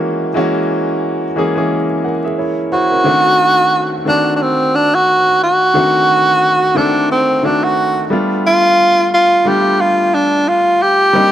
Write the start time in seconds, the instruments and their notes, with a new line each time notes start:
Already playing: grand piano E3 G#3 A#3 C#4 F#4
0.34 grand piano E3 G#3 A#3 C#4 F#4
1.36 grand piano E3 G#3 A#3 C#4 G#4
1.55 grand piano E3 G#3 A#3 C#4 G#4
2.04 grand piano A#4 F#5
2.24 grand piano G#4 E5
2.38 grand piano E4 C#5
2.72 grand piano E4 C5, tenor saxophone F#4
2.91 grand piano C#4 A#4
3.04 grand piano D#3 A3 C4 D4 F#4
4.05 grand piano D#3 A3 C4 D4 F#4, tenor saxophone D4
4.36 tenor saxophone D4
4.42 tenor saxophone C4
4.75 tenor saxophone D4
4.95 tenor saxophone F#4
5.43 tenor saxophone F#4
5.74 grand piano D#3 A3 C4 D4 F#4
6.75 grand piano D#3 A3 C4 D4 A4, tenor saxophone D4
7.11 tenor saxophone C4
7.42 grand piano D#3 A3 C4 D4 F#4, tenor saxophone D4
7.64 tenor saxophone F#4
8.10 grand piano G3 A3 B3 D4 F4
8.47 tenor saxophone F4
9.14 tenor saxophone F4
9.45 grand piano G3 A3 B3 D4 F4, tenor saxophone G4
9.81 tenor saxophone F4
10.14 tenor saxophone D4
10.48 tenor saxophone F4
10.82 tenor saxophone G4
11.13 grand piano G3 A#3 C4 D4 D#4